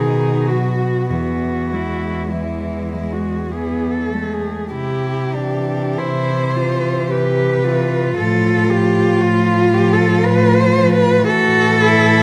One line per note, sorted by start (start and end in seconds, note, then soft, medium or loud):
0.00 1.11 B2 medium
0.00 0.51 D#3 soft
0.00 0.51 D#4 soft
0.00 0.49 G#4 medium
0.47 1.10 F#3 soft
0.47 1.08 F#4 soft
0.47 1.09 F#4 soft
1.09 4.50 E2 soft
1.09 1.74 E3 soft
1.09 1.73 B3 soft
1.09 2.31 F#4 soft
1.72 2.34 G#3 soft
1.72 2.31 E4 soft
2.30 2.94 E3 soft
2.30 3.48 G#3 soft
2.30 2.90 E4 soft
2.91 3.53 G#3 soft
2.91 3.14 E4 soft
3.12 3.53 F#4 soft
3.51 4.15 E3 soft
3.51 4.12 B3 soft
3.51 3.93 G#4 soft
3.92 4.34 A4 soft
4.13 4.73 G#3 soft
4.13 4.71 A3 soft
4.33 4.72 G#4 soft
4.72 5.84 C3 soft
4.72 5.36 E4 soft
4.72 6.00 G4 medium
5.35 6.53 E3 soft
5.35 5.99 D4 soft
5.98 6.97 C3 soft
5.98 6.57 E4 soft
5.98 7.12 C5 medium
6.56 7.62 E3 soft
6.56 7.10 F4 soft
7.11 8.05 C3 medium
7.11 7.66 G4 medium
7.11 8.17 B4 medium
7.64 8.17 E3 soft
7.64 11.26 F4 medium
8.17 9.10 A2 medium
8.17 8.69 F3 soft
8.17 8.72 A4 medium
8.70 9.73 F3 soft
8.70 9.24 G4 medium
9.23 10.14 A2 medium
9.23 9.76 F4 medium
9.74 10.73 F3 medium
9.74 9.94 G4 medium
9.92 10.27 A4 medium
10.25 11.14 A2 medium
10.25 10.62 B4 medium
10.60 10.92 C5 medium
10.76 11.25 F3 medium
10.93 11.26 B4 medium
11.26 12.23 A2 medium
11.26 12.23 E3 medium
11.26 11.81 F#4 medium
11.26 12.23 A4 loud
11.82 12.23 E4 medium